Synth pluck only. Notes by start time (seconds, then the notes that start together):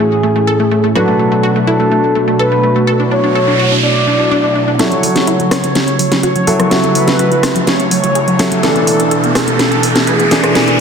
0.23 A3
0.36 A3
0.47 A4
0.60 A3
0.71 A3
0.84 A3
0.95 F#4
1.08 A3
1.19 A3
1.32 A3
1.43 F#4
1.56 A3
1.67 E4
1.80 A3
1.91 A3
2.15 A3
2.28 A3
2.39 A4
2.52 A3
2.63 A3
2.76 A3
2.87 A4
3.00 D4
3.11 D4
3.24 D4
3.35 A4
3.48 D4
3.59 F#4
3.72 D4
3.83 D4
4.07 D4
4.20 D4
4.31 D4
4.44 D4
4.55 D4
4.68 D4
4.79 E4
4.92 F#3
5.03 F#3
5.16 F#3
5.27 E4
5.40 F#3
5.51 C#4
5.64 F#3
5.75 F#3
5.99 F#3
6.12 F#3
6.23 F#4
6.36 F#3
6.47 F#3
6.60 F#3
6.71 F#4
6.84 F#3
6.95 F#3
7.08 F#3
7.19 F#4
7.32 F#3
7.43 E4
7.56 F#3
7.67 F#3
7.91 F#3
8.04 F#3
8.15 G#4
8.28 F#3
8.39 F#3
8.52 F#3
8.63 A4
8.76 B3
8.87 B3
9.00 B3
9.11 A4
9.24 B3
9.35 G#4
9.48 B3
9.59 B3
9.83 B3
9.96 B3
10.07 B4
10.20 B3
10.31 B3
10.44 B3
10.55 B4
10.68 E4